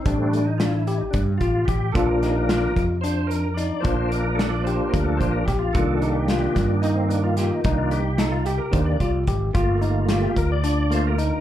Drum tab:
HH |xxxxxxx|xxxxxxx|xxxxxxx|xxxxxxx|
SD |--o----|-oo----|--o---o|--oo--o|
BD |o---ooo|o--o---|o---ooo|o--o---|

HH |xxxxxxx|xxxxxxx|
SD |--o----|--o----|
BD |o---ooo|o--o---|